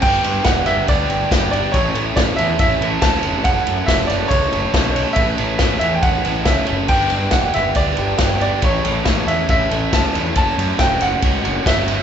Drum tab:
CC |x-------|--------|--------|--------|
RD |-xxxxxxx|xxxxxxxx|xxxxxxxx|xxxxxxxx|
SD |--oo--o-|--o---o-|--oo--o-|--o---o-|
BD |o-o-o-o-|o-o-o-o-|o-o-o-o-|o-o-o-o-|

CC |x-------|--------|--------|
RD |-xxxxxxx|xxxxxxxx|xxxxxxxx|
SD |--oo--o-|--o---o-|--oo--o-|
BD |o-o-o-o-|o-o-o-o-|o-o-o-o-|